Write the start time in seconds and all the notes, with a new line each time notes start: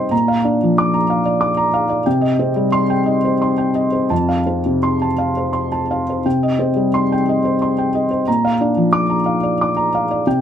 Already playing: C3 G3 D#4 C5 D#5 G5 C6
0.11 A#2 A#5
0.28 F5
0.44 D4 D5
0.63 F3
0.78 D6
0.94 A#5
1.10 F5
1.25 D5
1.41 D6
1.57 A#5
1.74 F5
1.89 D5
2.06 C3 G5
2.21 D#5
2.39 C4 C5
2.56 G3
2.72 C6
2.90 G5
3.06 D#5
3.25 C5
3.42 C6
3.58 G5
3.75 D#5
3.92 C5
4.10 F2 A5
4.29 F5
4.46 C4 C5
4.66 C3
4.83 C6
5.02 A5
5.18 F5
5.37 C5
5.53 C6
5.72 A5
5.91 F5
6.10 C5
6.26 C3 G5
6.43 D#5
6.59 C4 C5
6.76 G3
6.94 C6
7.12 G5
7.29 D#5
7.45 C5
7.62 C6
7.78 G5
7.95 D#5
8.11 C5
8.28 A#2 A#5
8.45 F5
8.61 D4 D5
8.77 F3
8.93 D6
9.10 A#5
9.26 F5
9.43 D5
9.61 D6
9.77 A#5
9.95 F5
10.11 D5
10.27 C3 G5